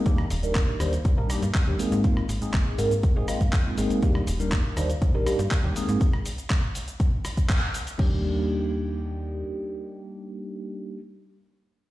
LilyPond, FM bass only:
\new Staff \with { instrumentName = "FM bass" } { \clef bass \time 4/4 \key ees \major \tempo 4 = 121 ees,16 r16 ees,,8 ees,16 r16 ees,16 r16 ees,16 bes,,16 r16 g,16 r16 ees,16 r16 aes,16~ | aes,8 aes,,8 aes,16 r16 aes,8 aes,,16 aes,,16 r16 aes,16 r8 aes,,16 r16 | ees,16 r16 ees,,8 ees,16 r16 ees,16 r16 ees,16 bes,,16 r16 g,16 r16 ees,16 r16 aes,16 | r1 |
ees,2. r4 | r1 | }